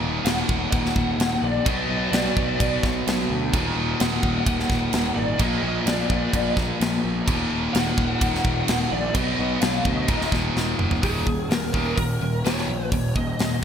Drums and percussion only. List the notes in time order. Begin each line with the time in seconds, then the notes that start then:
0.26 snare, crash
0.49 kick
0.72 kick, crash
0.86 snare
0.96 kick
1.20 snare, crash
1.66 kick, crash
2.13 snare, crash
2.37 kick
2.60 kick, crash
2.83 kick, snare
3.08 snare, crash
3.54 kick, crash
4.00 snare, crash
4.23 kick
4.46 kick, crash
4.60 snare
4.70 kick, snare
4.93 snare, crash
5.39 kick, crash
5.87 snare, crash
6.10 kick
6.33 kick, crash
6.57 kick, snare
6.81 snare, crash
7.28 kick, crash
7.75 snare, crash
7.98 kick
8.21 kick, crash
8.35 snare
8.45 kick
8.68 snare, crash
9.15 kick, crash
9.62 snare, crash
9.85 kick
10.08 kick, crash
10.21 snare
10.32 kick, snare
10.57 snare
10.79 mid tom
10.91 floor tom
11.03 kick, open hi-hat
11.27 kick
11.51 snare, open hi-hat
11.74 kick
11.98 kick, open hi-hat
12.45 snare, open hi-hat
12.58 snare
12.92 kick, open hi-hat
13.16 kick
13.39 snare, open hi-hat